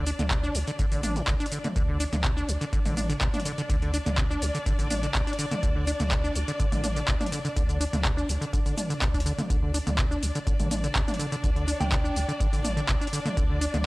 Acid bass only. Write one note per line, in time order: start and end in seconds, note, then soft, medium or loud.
0.07 0.11 D4 loud
0.19 0.23 D3 loud
0.31 0.38 C3 medium
0.43 0.57 D4 loud
0.55 0.59 D3 medium
0.68 0.71 D3 loud
0.79 0.86 D3 medium
0.92 1.01 D3 medium
1.03 1.18 D4 medium
1.16 1.22 D3 loud
1.28 1.35 D3 loud
1.40 1.46 D4 loud
1.52 1.59 D3 medium
1.64 1.68 D3 medium
1.76 1.83 D3 medium
1.89 1.98 D3 medium
2.00 2.04 D4 loud
2.13 2.16 D3 loud
2.24 2.31 C3 loud
2.37 2.50 D4 loud
2.48 2.53 D3 medium
2.61 2.65 D3 loud
2.73 2.80 D3 medium
2.85 2.95 D3 medium
2.97 3.01 D4 medium
3.09 3.13 D3 loud
3.21 3.28 C3 loud
3.34 3.40 D4 loud
3.45 3.52 D3 loud
3.58 3.62 D3 loud
3.70 3.76 D3 medium
3.82 3.92 D3 medium
3.94 3.98 D4 loud
4.06 4.10 D3 loud
4.18 4.25 C3 loud
4.30 4.44 D4 loud
4.42 4.46 D3 medium
4.55 4.58 D3 loud
4.66 4.73 D3 medium
4.79 4.88 D3 medium
4.90 4.95 D4 medium
5.03 5.07 D3 loud
5.15 5.22 C3 loud
5.27 5.34 D4 loud
5.39 5.46 D3 loud
5.51 5.55 D3 loud
5.63 5.70 D3 medium
5.76 5.85 D3 medium
5.87 5.91 D4 loud
6.00 6.04 D3 loud
6.11 6.18 C3 loud
6.24 6.37 D4 loud
6.35 6.40 D3 medium
6.48 6.52 D3 loud
6.60 6.67 D3 medium
6.72 6.82 D3 medium
6.84 6.88 D4 medium
6.96 7.00 D3 loud
7.08 7.15 C3 loud
7.21 7.27 D4 loud
7.32 7.39 D3 loud
7.45 7.49 D3 loud
7.56 7.63 D3 medium
7.69 7.79 D3 medium
7.81 7.85 D4 loud
7.93 7.97 D3 loud
8.05 8.12 C3 loud
8.17 8.30 D4 loud
8.29 8.33 D3 medium
8.41 8.45 D3 loud
8.53 8.60 D3 medium
8.66 8.75 D3 medium
8.77 8.82 D4 medium
8.90 8.94 D3 loud
9.01 9.09 C3 medium
9.14 9.21 D4 loud
9.26 9.33 D3 loud
9.38 9.42 D3 loud
9.50 9.57 D3 medium
9.63 9.72 D3 medium
9.74 9.78 D4 loud
9.87 9.91 D3 loud
9.98 10.05 C3 loud
10.11 10.24 D4 loud
10.23 10.27 D3 medium
10.35 10.39 D3 loud
10.47 10.54 D3 medium
10.60 10.69 D3 medium
10.71 10.75 D4 medium
10.84 10.88 D3 loud
10.95 11.02 C3 loud
11.08 11.14 D4 loud
11.19 11.26 D3 loud
11.32 11.36 D3 loud
11.43 11.50 D3 medium
11.56 11.66 D3 medium
11.68 11.72 D4 loud
11.80 11.84 D3 loud
11.92 11.99 C3 loud
12.04 12.17 D4 loud
12.16 12.20 D3 medium
12.28 12.32 D3 loud
12.40 12.47 D3 medium
12.53 12.63 D3 medium
12.64 12.69 D4 medium
12.77 12.81 D3 loud
12.88 12.96 C3 loud
13.01 13.08 D4 medium
13.13 13.20 D3 loud
13.25 13.29 D3 loud
13.37 13.44 D3 medium
13.50 13.59 D3 medium
13.61 13.66 D4 loud
13.74 13.78 D3 loud